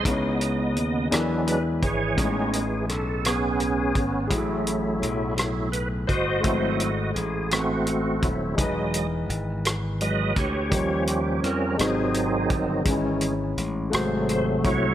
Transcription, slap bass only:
0.05 0.76 C#2 medium
0.76 1.09 D#2 medium
1.12 1.85 E2 medium
1.83 2.15 G#1 medium
2.18 2.89 A1 medium
2.89 3.91 B1 medium
3.95 4.28 G#1 medium
4.31 4.98 A1 medium
5.02 6.05 B1 medium
6.09 6.42 G1 medium
6.44 7.12 G#1 medium
7.16 8.18 A1 medium
8.23 8.56 D#1 medium
8.58 9.26 E1 medium
9.29 10.32 G#1 medium
10.37 10.69 D2 medium
10.72 11.39 D#2 medium
11.43 11.76 F2 medium
11.79 12.46 G#1 medium
12.50 12.83 G1 medium
12.86 13.53 G#1 medium
13.57 13.90 A1 medium
13.93 14.60 G#1 medium
14.65 14.94 C2 medium

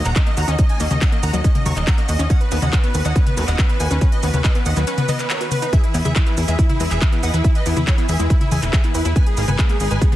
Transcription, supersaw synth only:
0.05 0.13 F#5 medium
0.05 0.13 A#5 medium
0.16 0.24 D#5 medium
0.27 0.35 D#5 medium
0.37 0.46 F#5 medium
0.37 0.46 A#5 medium
0.48 0.56 D#5 medium
0.58 0.67 D#5 medium
0.69 0.78 D#5 medium
0.69 0.78 G#5 medium
0.80 0.88 D#5 medium
0.91 0.99 D#5 medium
1.02 1.10 D#5 medium
1.02 1.10 F#5 medium
1.12 1.21 D#5 medium
1.23 1.31 F#5 medium
1.23 1.31 A#5 medium
1.34 1.42 D#5 medium
1.44 1.53 D#5 medium
1.55 1.63 D#5 medium
1.66 1.74 A#5 medium
1.66 1.74 C#6 medium
1.76 1.85 D#5 medium
1.87 1.96 F#5 medium
1.87 1.96 A#5 medium
1.98 2.06 D#5 medium
2.09 2.17 D#5 medium
2.19 2.28 D#5 medium
2.30 2.38 D#5 medium
2.30 2.38 F#5 loud
2.41 2.49 B4 medium
2.52 2.60 B4 medium
2.62 2.71 D#5 medium
2.62 2.71 F#5 loud
2.73 2.81 B4 medium
2.84 2.92 B4 medium
2.94 3.03 B4 medium
3.05 3.13 D#5 medium
3.05 3.13 F#5 loud
3.16 3.24 B4 medium
3.26 3.35 B4 medium
3.37 3.45 B4 medium
3.48 3.56 D#5 medium
3.48 3.56 F#5 loud
3.58 3.67 B4 medium
3.69 3.78 B4 medium
3.80 3.88 B4 medium
3.80 3.88 G#5 medium
3.91 3.99 B4 medium
4.02 4.10 B4 medium
4.12 4.21 B4 medium
4.12 4.21 D#5 medium
4.23 4.31 B4 medium
4.34 4.42 B4 medium
4.44 4.53 B4 medium
4.44 4.53 D#5 medium
4.55 4.64 B4 medium
4.66 4.74 D#5 medium
4.66 4.74 F#5 loud
4.77 4.85 B4 medium
4.87 4.96 B4 medium
4.98 5.06 B4 medium
5.09 5.17 B4 medium
5.09 5.17 D#5 medium
5.19 5.28 B4 medium
5.30 5.38 A#4 medium
5.30 5.38 C#5 medium
5.41 5.49 B4 medium
5.52 5.60 B4 medium
5.62 5.70 B4 medium
5.73 5.81 G#4 medium
5.73 5.81 E5 loud
5.83 5.92 E4 medium
5.94 6.03 E4 medium
6.05 6.13 G#4 medium
6.05 6.13 E5 loud
6.16 6.24 E4 medium
6.27 6.35 E4 medium
6.38 6.46 E4 medium
6.48 6.56 G#4 medium
6.48 6.56 E5 loud
6.59 6.67 E4 medium
6.70 6.78 E4 medium
6.80 6.88 E4 medium
6.91 6.99 G#4 medium
6.91 6.99 E5 medium
7.02 7.10 E4 medium
7.12 7.21 E4 medium
7.23 7.31 D#5 medium
7.23 7.31 F#5 loud
7.34 7.42 E4 medium
7.45 7.53 E4 medium
7.55 7.64 B4 medium
7.55 7.64 D#5 medium
7.66 7.74 E4 medium
7.77 7.85 E4 medium
7.87 7.96 E4 medium
7.87 7.96 C#5 medium
7.98 8.06 E4 medium
8.09 8.17 G#4 medium
8.09 8.17 E5 medium
8.19 8.28 E4 medium
8.30 8.38 E4 medium
8.41 8.49 E4 medium
8.52 8.60 E5 medium
8.52 8.60 G#5 medium
8.62 8.71 E4 medium
8.73 8.81 G#4 medium
8.73 8.81 E5 medium
8.84 8.92 E4 medium
8.94 9.03 E4 medium
9.05 9.13 E4 medium
9.16 9.24 B4 medium
9.16 9.24 G#5 loud
9.26 9.35 G#4 medium
9.37 9.46 G#4 medium
9.48 9.56 B4 medium
9.48 9.56 G#5 loud
9.59 9.67 G#4 medium
9.70 9.78 G#4 medium
9.80 9.88 G#4 medium
9.91 9.99 B4 medium
9.91 9.99 G#5 loud
10.01 10.10 G#4 medium
10.12 10.16 G#4 medium

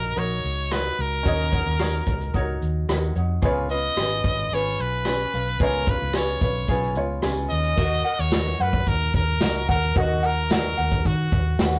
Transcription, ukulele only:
0.00 0.15 D#4 soft
0.00 0.15 F#4 medium
0.00 0.15 A#4 medium
0.00 0.17 C#5 medium
0.16 0.71 D#4 medium
0.16 0.71 F#4 medium
0.16 0.69 A#4 medium
0.16 0.73 C#5 medium
0.71 1.24 D#4 medium
0.71 1.25 F#4 medium
0.71 1.24 A#4 medium
0.71 1.26 C#5 medium
1.25 1.53 D#4 medium
1.25 1.52 F#4 medium
1.25 1.52 A#4 medium
1.25 1.51 C#5 medium
1.52 1.78 D#4 soft
1.52 1.79 F#4 soft
1.52 1.79 C#5 medium
1.79 2.33 D#4 medium
1.79 2.34 F#4 medium
1.79 2.32 A#4 medium
1.79 2.35 C#5 medium
2.34 2.88 D#4 medium
2.34 2.89 F#4 medium
2.34 2.87 A#4 medium
2.34 2.91 C#5 medium
2.89 3.16 D#4 medium
2.89 3.16 F#4 medium
2.89 3.16 A#4 medium
2.89 3.14 C#5 medium
3.16 3.43 D#4 soft
3.16 3.43 F#4 soft
3.16 3.43 C#5 soft
3.42 3.70 C#4 medium
3.42 3.70 F4 loud
3.42 3.70 G#4 medium
3.42 3.69 B4 medium
3.70 3.99 C#4 soft
3.70 3.98 F4 soft
3.70 3.97 B4 medium
3.98 4.52 C#4 medium
3.98 4.53 F4 medium
3.98 4.51 G#4 medium
3.98 4.53 B4 medium
4.53 5.05 C#4 medium
4.53 5.06 F4 medium
4.53 5.04 G#4 medium
4.53 5.06 B4 medium
5.05 5.34 C#4 medium
5.05 5.33 F4 medium
5.05 5.33 G#4 medium
5.05 5.32 B4 medium
5.33 5.60 C#4 soft
5.33 5.60 F4 soft
5.33 5.60 B4 soft
5.60 5.88 C#4 medium
5.60 5.88 F4 loud
5.60 5.88 G#4 medium
5.60 5.87 B4 medium
5.88 6.14 C#4 soft
5.88 6.15 F4 soft
5.88 6.15 B4 medium
6.14 6.42 C#4 medium
6.14 6.42 F4 medium
6.14 6.42 G#4 medium
6.14 6.41 B4 medium
6.42 6.68 C#4 soft
6.42 6.69 F4 soft
6.42 6.69 B4 soft
6.69 7.22 C#4 medium
6.69 7.24 F4 medium
6.69 7.21 G#4 medium
6.69 7.24 B4 medium
7.22 7.78 C#4 medium
7.22 7.79 F4 medium
7.22 7.77 G#4 medium
7.22 7.79 B4 medium
7.77 8.06 F#4 medium
7.77 8.04 A#4 medium
7.77 8.05 D#5 medium
7.77 8.03 F#5 medium
8.04 8.32 F#4 soft
8.04 8.33 A#4 medium
8.04 8.32 F#5 medium
8.32 8.60 F#4 medium
8.32 8.60 A#4 medium
8.32 8.60 D#5 medium
8.32 8.59 F#5 medium
8.60 9.42 F#4 soft
8.60 9.42 A#4 soft
8.60 9.43 F#5 soft
9.41 9.69 F#4 medium
9.41 9.68 A#4 medium
9.41 9.69 D#5 medium
9.41 9.67 F#5 medium
9.68 9.95 F#4 soft
9.68 9.96 A#4 soft
9.68 9.96 F#5 soft
9.96 10.24 F#4 medium
9.96 10.23 A#4 medium
9.96 10.23 D#5 medium
9.96 10.21 F#5 medium
10.23 10.49 F#4 soft
10.23 10.50 A#4 soft
10.23 10.50 F#5 medium
10.49 10.78 F#4 medium
10.49 10.78 A#4 medium
10.49 10.77 D#5 medium
10.49 10.76 F#5 medium
10.77 11.60 F#4 soft
10.77 11.60 A#4 soft
10.77 11.62 F#5 soft
11.59 11.79 F#4 medium
11.59 11.79 A#4 medium
11.59 11.62 D#5 medium
11.59 11.79 F#5 medium

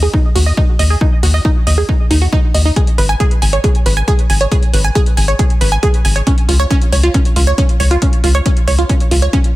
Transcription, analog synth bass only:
0.35 0.52 D#2 medium
0.79 0.96 D#2 medium
1.23 1.40 D#2 medium
1.67 1.84 D#2 medium
2.11 2.27 D#2 medium
2.54 2.71 D#2 medium
2.98 3.15 G#1 medium
3.42 3.59 G#1 medium
3.86 4.03 G#1 loud
4.30 4.46 G#1 medium
4.73 4.90 G#1 medium
5.17 5.34 G#1 medium
5.61 5.78 G#1 medium
6.05 6.22 G#1 medium
6.49 6.65 C#2 medium
6.92 7.09 C#2 medium
7.36 7.53 C#2 medium
7.80 7.97 C#2 medium
8.24 8.41 C#2 loud
8.68 8.84 C#2 medium
9.11 9.28 C#2 loud

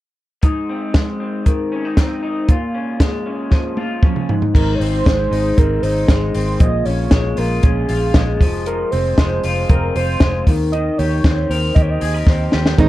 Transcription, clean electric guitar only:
0.43 2.48 G#2 medium
0.43 1.72 D#4 medium
0.69 1.19 C4 soft
0.94 3.00 G#3 soft
1.20 1.96 C4 soft
1.46 2.54 D#3 medium
1.72 1.85 C#4 medium
1.85 2.22 D#4 soft
1.97 2.54 C4 medium
2.23 2.49 D#4 medium
2.48 4.29 A#2 medium
2.48 3.76 F4 soft
2.75 3.25 C#4 soft
3.00 5.05 G#3 medium
3.26 4.02 C#4 medium
3.51 4.34 F3 medium
3.78 4.34 F4 medium
4.03 4.34 C#4 medium
4.29 4.53 G#2 medium
4.55 6.60 G#2 medium
4.80 5.56 C4 medium
5.06 6.09 G#3 medium
5.31 5.82 D#4 medium
5.57 6.34 C4 medium
5.83 6.65 D#4 medium
6.09 7.12 G#3 medium
6.35 6.66 C4 medium
6.61 8.46 A#2 medium
6.86 7.62 C#4 medium
7.12 8.15 G#3 medium
7.37 7.89 F4 medium
7.64 8.46 C#4 soft
7.89 9.44 F4 medium
8.16 9.19 G#3 medium
8.41 8.65 F3 medium
8.66 10.46 F3 medium
8.93 9.70 C4 medium
9.19 10.21 G#3 medium
9.44 9.95 F4 medium
9.70 11.25 C4 medium
9.96 10.52 F4 medium
10.22 10.52 G#3 medium
10.48 10.73 D#3 medium
10.73 12.89 D#3 medium
10.99 11.74 G4 medium
11.25 12.27 C4 medium
11.51 12.01 A#4 medium
11.76 12.51 G4 medium
12.02 12.14 G#4 medium
12.14 12.83 A#4 medium
12.27 12.89 C4 medium
12.53 12.83 G4 soft
12.78 12.89 G#2 medium

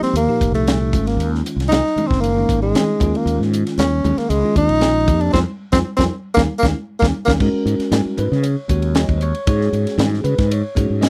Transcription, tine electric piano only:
0.00 0.22 F3 medium
0.00 0.22 A#3 medium
0.00 0.22 D#4 soft
0.00 0.23 G4 medium
0.27 0.93 A#2 medium
0.27 0.92 F3 medium
0.27 0.93 D#4 medium
0.27 0.93 G4 medium
0.93 1.80 D#3 medium
0.93 1.80 G#3 medium
0.93 1.81 C#4 medium
0.93 1.81 F4 medium
1.96 2.30 D#3 medium
1.96 2.30 G#3 medium
1.96 2.30 C#4 medium
1.96 2.30 D#4 medium
2.36 2.99 D#3 medium
2.36 3.00 G#3 medium
2.36 3.01 C#4 medium
2.36 3.01 D#4 medium
3.00 3.88 D#3 medium
3.00 3.88 G#3 medium
3.00 3.89 C#4 medium
3.00 3.89 F4 medium
4.03 4.36 D#3 medium
4.03 4.37 G#3 medium
4.03 4.37 C#4 medium
4.03 4.37 G#4 medium
4.43 5.08 D#3 medium
4.43 5.08 G#3 medium
4.43 5.08 C#4 medium
4.43 5.08 F4 medium
5.06 5.33 F3 medium
5.06 5.33 A#3 medium
5.06 5.31 D#4 medium
5.06 5.34 G4 medium
5.32 5.41 C4 medium
5.32 5.42 D#4 medium
5.32 5.41 F4 medium
5.72 5.81 C4 medium
5.72 5.81 D#4 medium
5.72 5.81 F4 medium
5.98 6.07 C4 medium
5.98 6.07 D#4 medium
5.98 6.06 F4 medium
6.36 6.45 A#3 medium
6.36 6.45 C#4 medium
6.36 6.45 D#4 medium
6.63 6.72 A#3 medium
6.63 6.72 C#4 medium
6.63 6.72 D#4 medium
7.02 7.10 A#3 medium
7.02 7.10 C#4 medium
7.02 7.10 D#4 medium
7.28 7.37 A#3 medium
7.28 7.37 C#4 medium
7.28 7.36 D#4 medium
7.40 8.27 G#3 medium
7.40 8.28 C#4 medium
7.40 8.28 F#4 medium
7.40 8.28 A#4 medium
8.19 8.44 B4 medium
8.43 8.69 C#5 medium
8.68 9.35 G#3 medium
8.68 9.35 C#4 medium
8.68 9.35 F#4 medium
8.68 9.21 C#5 medium
8.97 9.21 D#5 medium
9.18 9.21 C5 medium
9.23 9.47 C#5 medium
9.46 10.34 G#3 medium
9.46 10.34 C#4 medium
9.46 10.35 F#4 medium
9.46 10.35 G#4 medium
9.46 9.96 C#5 medium
10.24 10.50 B4 medium
10.48 10.51 C5 medium
10.52 11.00 C#5 medium
10.75 11.09 G#3 medium
10.75 11.09 C#4 medium
10.75 11.09 F#4 medium
10.75 11.09 G#4 medium
11.02 11.09 D#5 loud

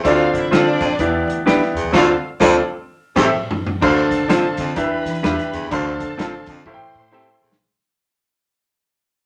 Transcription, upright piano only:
0.04 0.76 D3 medium
0.04 0.43 C4 loud
0.04 0.11 E4 medium
0.04 0.44 A4 medium
0.04 0.45 D5 loud
0.10 0.47 F4 medium
0.51 0.91 C4 medium
0.51 0.91 F4 medium
0.51 0.91 A4 medium
0.51 0.92 F5 medium
0.99 1.71 E3 medium
0.99 1.38 B3 medium
0.99 1.39 E4 medium
0.99 1.39 G4 medium
0.99 1.39 D5 medium
1.46 1.86 B3 medium
1.46 1.86 E4 medium
1.46 1.86 G4 medium
1.46 1.87 D5 medium
1.93 2.13 D3 medium
1.93 2.12 C4 medium
1.93 2.13 F4 medium
1.93 2.13 A4 medium
1.93 2.14 D5 medium
2.40 2.60 C4 medium
2.40 2.60 F4 medium
2.40 2.60 A4 loud
2.40 2.61 D5 medium
3.16 3.29 A2 medium
3.16 3.29 C4 medium
3.16 3.29 G4 medium
3.16 3.29 A4 medium
3.24 3.33 E5 medium
3.81 4.54 D3 medium
3.81 4.21 D4 loud
3.81 4.21 A4 medium
3.81 4.21 C5 medium
3.81 4.22 F5 loud
4.28 4.68 D4 medium
4.28 4.68 A4 medium
4.28 4.69 C5 medium
4.28 4.69 F5 medium
4.76 5.48 E3 medium
4.76 5.15 D4 medium
4.76 5.16 G4 medium
4.76 5.16 B4 medium
4.76 5.16 E5 medium
5.23 5.63 D4 medium
5.23 5.31 F4 medium
5.23 5.63 B4 medium
5.23 5.64 E5 medium
5.30 5.66 G4 medium
5.71 6.43 D3 medium
5.71 6.10 D4 loud
5.71 6.11 A4 medium
5.71 6.11 C5 medium
5.71 6.11 F5 loud
6.18 6.57 D4 medium
6.18 6.58 A4 medium
6.18 6.58 C5 medium
6.18 6.59 F5 loud
6.66 7.38 A2 medium
6.66 7.05 E4 medium
6.66 7.05 A4 medium
6.66 7.05 C5 medium
6.66 6.73 F5 medium
6.74 7.09 G5 medium
7.11 7.51 E4 medium
7.11 7.52 A4 medium
7.11 7.52 C5 medium
7.11 7.52 G5 medium

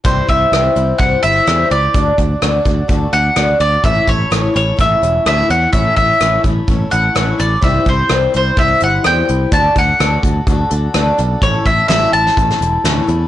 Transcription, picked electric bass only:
0.05 0.20 C2 medium
0.29 0.44 C2 medium
0.52 0.68 C2 medium
0.76 0.92 C2 medium
1.00 1.15 C2 medium
1.24 1.39 G1 medium
1.47 1.63 E2 medium
1.71 1.87 C#2 medium
1.95 2.10 D2 medium
2.18 2.34 D2 medium
2.43 2.58 D2 medium
2.66 2.81 D2 medium
2.89 3.05 D2 medium
3.13 3.28 D2 medium
3.37 3.52 D2 medium
3.60 3.76 D2 medium
3.84 3.99 A1 medium
4.08 4.23 A1 medium
4.32 4.47 A1 medium
4.56 4.71 A1 medium
4.79 4.94 A1 medium
5.03 5.18 E1 medium
5.26 5.41 D2 medium
5.50 5.65 E2 medium
5.73 5.89 A1 medium
5.97 6.13 A1 medium
6.21 6.36 A1 medium
6.44 6.60 A1 medium
6.68 6.84 A1 medium
6.93 7.08 A1 medium
7.16 7.32 A1 medium
7.40 7.55 A1 medium
7.62 7.78 C2 medium
7.86 8.02 C2 medium
8.11 8.26 C2 medium
8.35 8.50 C2 medium
8.57 8.73 C2 medium
8.82 8.97 G1 medium
9.06 9.21 E2 medium
9.30 9.45 C2 medium
9.52 9.68 D2 medium
9.76 9.91 D2 medium
10.00 10.16 D2 medium
10.24 10.39 D2 medium
10.47 10.63 D2 medium
10.72 10.87 D2 medium
10.95 11.11 D2 medium
11.19 11.34 B1 medium
11.42 11.57 A1 medium
11.66 11.81 A1 medium
11.89 12.05 A1 medium
12.13 12.29 A1 medium
12.37 12.53 A1 medium
12.61 12.76 E1 medium
12.84 13.00 D2 medium
13.08 13.24 E2 medium

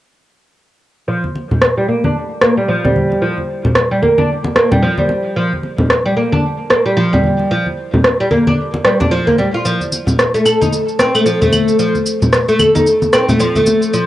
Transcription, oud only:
1.08 1.23 F3 medium
1.77 1.87 G3 medium
1.88 2.03 A#3 medium
2.04 2.15 D4 medium
2.42 2.57 A#3 medium
2.57 2.68 G3 medium
2.68 2.83 F3 medium
2.84 3.21 G3 medium
3.22 3.37 F3 medium
3.91 4.01 G3 medium
4.02 4.18 A#3 medium
4.18 4.29 D4 medium
4.56 4.71 A#3 medium
4.72 4.82 G3 medium
4.83 4.98 F3 medium
4.98 5.35 G3 medium
5.36 5.51 F3 medium
6.06 6.16 G3 medium
6.17 6.32 A#3 medium
6.32 6.43 D4 medium
6.70 6.85 A#3 medium
6.86 6.96 G3 medium
6.97 7.12 F3 medium
7.13 7.50 G3 medium
7.51 7.66 F3 medium
8.20 8.30 G3 medium
8.31 8.46 A#3 medium
8.47 8.57 D4 medium
8.84 8.99 G3 medium
9.00 9.10 D4 medium
9.11 9.26 F3 medium
9.27 9.38 A#3 medium
9.38 9.47 G3 medium
9.54 9.64 F4 medium
9.65 9.80 F3 medium
10.34 10.44 A3 medium
10.45 10.60 A4 medium
10.61 10.72 D#4 medium
10.99 11.14 C4 medium
11.15 11.25 A3 medium
11.26 11.41 F3 medium
11.42 11.78 A3 medium
11.79 11.94 F3 medium
12.48 12.58 A3 medium
12.59 12.74 A4 medium
12.75 12.86 D#4 medium
13.13 13.28 C4 medium
13.29 13.39 A3 medium
13.40 13.55 F3 medium
13.56 13.93 A3 medium
13.93 14.06 F3 medium

